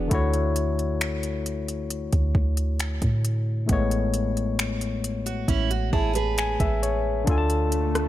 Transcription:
0.00 0.13 E3 medium
0.00 0.13 B3 medium
0.00 0.13 F#4 medium
0.00 0.13 G#4 medium
0.00 0.13 D5 medium
0.08 2.09 D2 loud
0.08 3.64 D3 medium
0.08 3.65 A3 medium
0.08 3.65 E4 medium
0.08 kick loud
0.08 closed hi-hat medium
0.13 3.66 F#4 medium
0.13 3.67 C#5 medium
0.34 closed hi-hat soft
0.56 closed hi-hat medium
0.79 closed hi-hat soft
1.01 finger snap loud
1.01 closed hi-hat medium
1.23 closed hi-hat soft
1.46 closed hi-hat medium
1.68 closed hi-hat soft
1.90 closed hi-hat medium
2.12 2.34 D2 medium
2.12 kick medium
2.12 closed hi-hat soft
2.35 3.00 D2 loud
2.35 kick medium
2.57 closed hi-hat medium
2.79 finger snap loud
2.79 closed hi-hat medium
3.02 3.67 A2 loud
3.02 kick medium
3.02 closed hi-hat soft
3.25 closed hi-hat medium
3.66 5.45 A1 loud
3.66 7.22 A2 medium
3.66 7.23 A3 medium
3.66 7.24 B3 medium
3.66 kick loud
3.66 closed hi-hat medium
3.71 7.24 G#3 medium
3.71 6.81 C#5 medium
3.91 closed hi-hat soft
4.14 closed hi-hat medium
4.37 closed hi-hat soft
4.59 finger snap loud
4.59 closed hi-hat medium
4.81 closed hi-hat soft
5.04 closed hi-hat medium
5.26 5.47 F#4 medium
5.26 closed hi-hat soft
5.48 5.91 A1 loud
5.48 5.70 C#4 medium
5.48 5.70 E4 medium
5.48 kick medium
5.48 closed hi-hat medium
5.71 5.92 F#4 medium
5.71 closed hi-hat soft
5.93 6.58 A1 loud
5.93 6.15 E4 medium
5.93 6.14 G#4 medium
5.93 6.35 A5 medium
5.93 kick medium
6.15 7.24 G#4 medium
6.15 7.23 B4 medium
6.15 closed hi-hat medium
6.38 6.59 G#5 medium
6.38 finger snap medium
6.38 closed hi-hat medium
6.60 7.25 A1 loud
6.60 6.81 E5 medium
6.60 kick medium
6.60 closed hi-hat soft
6.83 7.24 C#5 medium
6.83 closed hi-hat medium
7.24 8.08 D2 loud
7.24 8.08 D3 medium
7.24 8.08 D4 medium
7.24 8.08 F4 medium
7.24 kick loud
7.24 closed hi-hat medium
7.24 swell medium
7.30 8.08 A4 medium
7.30 7.36 G#5 medium
7.38 8.08 A5 medium
7.50 closed hi-hat soft
7.72 closed hi-hat medium
7.95 cross-stick loud
7.95 closed hi-hat soft

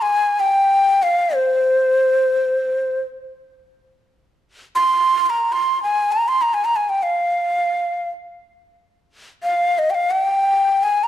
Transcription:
0.02 0.41 G#5 medium
0.40 1.04 G5 medium
1.03 1.36 F5 medium
1.35 3.01 C5 medium
4.75 5.26 C6 medium
5.26 5.54 A#5 medium
5.26 5.31 C6 medium
5.52 5.82 C6 medium
5.83 6.14 G#5 medium
6.12 6.30 A#5 medium
6.28 6.43 C6 medium
6.42 6.55 A#5 medium
6.54 6.66 G#5 medium
6.65 6.78 A#5 medium
6.76 6.91 G#5 medium
6.89 7.04 G5 medium
7.03 8.09 F5 medium
9.43 9.80 F5 medium
9.79 9.92 D#5 medium
9.90 9.96 G5 medium
9.95 10.12 F5 medium
10.11 10.85 G5 medium
10.83 11.05 G#5 medium
11.04 11.08 A#5 medium

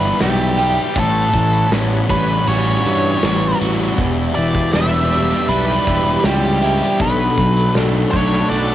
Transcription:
0.00 0.11 G1 medium
0.00 0.96 E3 medium
0.00 1.34 E3 medium
0.00 1.35 E3 medium
0.00 0.21 G3 medium
0.00 0.22 G3 medium
0.00 0.20 B3 medium
0.00 1.00 B3 medium
0.00 1.01 B3 medium
0.00 0.96 D4 medium
0.00 0.57 G4 medium
0.00 0.60 G4 medium
0.00 0.21 B4 loud
0.00 0.93 D5 medium
0.00 0.93 E5 medium
0.00 0.93 B5 medium
0.00 closed hi-hat medium
0.20 0.78 B1 medium
0.20 1.00 G3 medium
0.20 1.01 G3 medium
0.20 1.70 B3 medium
0.20 0.99 G4 medium
0.20 snare loud
0.20 closed hi-hat medium
0.58 1.00 G4 medium
0.58 2.51 G4 medium
0.58 1.01 G4 medium
0.58 closed hi-hat medium
0.77 closed hi-hat medium
0.94 1.25 A1 medium
0.94 2.85 A2 medium
0.94 2.86 A2 medium
0.94 2.08 G3 medium
0.94 3.95 C#5 medium
0.94 3.94 F#5 medium
0.94 3.94 B5 medium
0.94 kick loud
0.94 closed hi-hat medium
0.99 1.69 A4 medium
1.33 1.62 A1 medium
1.33 2.85 E3 medium
1.33 3.23 E3 medium
1.33 kick medium
1.33 closed hi-hat medium
1.53 closed hi-hat medium
1.71 2.00 A1 medium
1.71 2.46 G3 medium
1.71 3.22 B3 medium
1.71 2.85 C#4 medium
1.71 snare loud
1.71 closed hi-hat medium
2.09 2.38 A1 medium
2.09 3.98 G3 medium
2.09 3.23 G3 medium
2.09 3.98 C#4 medium
2.09 2.49 B4 medium
2.09 kick medium
2.09 closed hi-hat medium
2.47 2.76 A1 loud
2.47 3.23 G3 medium
2.47 3.98 C#4 medium
2.47 3.60 F#4 medium
2.47 3.57 C#5 loud
2.47 closed hi-hat medium
2.85 3.14 G2 medium
2.85 3.99 E3 medium
2.85 3.99 C#4 medium
2.85 3.59 F#4 medium
2.85 closed hi-hat medium
3.22 3.52 A1 medium
3.22 3.99 G3 medium
3.22 3.97 B3 medium
3.22 snare loud
3.22 closed hi-hat medium
3.60 3.89 A1 medium
3.60 3.98 F#4 medium
3.60 3.99 F#4 medium
3.60 closed hi-hat medium
3.79 closed hi-hat medium
3.97 4.26 E1 loud
3.97 5.87 E2 medium
3.97 5.88 E2 medium
3.97 4.72 B3 medium
3.97 6.97 G4 medium
3.97 6.97 D5 medium
3.97 6.97 E5 medium
3.97 8.75 B5 medium
3.97 kick loud
3.97 closed hi-hat medium
4.35 4.65 E1 medium
4.35 5.86 E3 medium
4.35 6.26 E3 medium
4.35 4.73 D5 medium
4.35 closed hi-hat medium
4.55 kick medium
4.73 5.31 E1 medium
4.73 5.48 G3 medium
4.73 5.10 B3 medium
4.73 5.88 D4 medium
4.73 5.51 E5 loud
4.73 snare loud
4.73 closed hi-hat medium
5.11 6.25 G3 medium
5.11 6.24 B3 medium
5.11 8.14 D4 medium
5.11 closed hi-hat medium
5.31 snare soft
5.31 closed hi-hat medium
5.48 5.77 B1 loud
5.48 6.25 G3 medium
5.48 8.75 D4 medium
5.48 6.62 E4 medium
5.48 6.25 B4 loud
5.48 closed hi-hat medium
5.86 6.15 E1 medium
5.86 7.00 E3 medium
5.86 7.76 D4 medium
5.86 6.61 G4 medium
5.86 kick medium
5.86 closed hi-hat medium
6.06 closed hi-hat medium
6.24 6.81 C#2 medium
6.24 7.01 G3 medium
6.24 8.49 B3 medium
6.24 7.01 G4 medium
6.24 snare loud
6.24 closed hi-hat medium
6.62 7.00 E4 medium
6.62 7.00 G4 medium
6.62 closed hi-hat medium
6.81 closed hi-hat medium
6.99 7.28 B1 medium
6.99 8.75 B2 medium
6.99 7.74 F#3 medium
6.99 8.75 D4 medium
6.99 8.75 A4 medium
6.99 7.72 B4 medium
6.99 8.75 F#5 medium
6.99 kick loud
6.99 closed hi-hat medium
7.38 7.66 B1 medium
7.38 8.75 F#3 medium
7.38 kick medium
7.38 closed hi-hat medium
7.56 closed hi-hat medium
7.75 8.04 B1 medium
7.75 8.11 F#3 medium
7.75 8.52 A3 medium
7.75 8.75 D4 medium
7.75 snare loud
7.75 closed hi-hat medium
8.11 8.42 B1 medium
8.11 8.75 F#3 medium
8.11 8.75 A3 medium
8.11 8.75 D4 medium
8.11 8.50 C#5 medium
8.11 kick medium
8.11 closed hi-hat medium
8.33 snare soft
8.50 8.75 B1 medium
8.50 8.75 A3 medium
8.50 8.75 F#4 medium
8.50 8.75 D5 loud
8.50 closed hi-hat medium

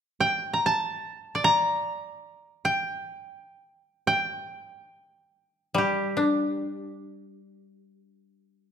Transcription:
0.20 1.55 G5 medium
0.53 0.72 A#5 medium
0.66 1.50 A5 medium
1.35 2.95 D5 medium
1.44 2.66 A#5 medium
2.65 4.04 G5 medium
4.07 5.74 G5 medium
5.74 8.72 G3 medium
5.74 8.65 G4 medium
6.17 8.72 D4 soft

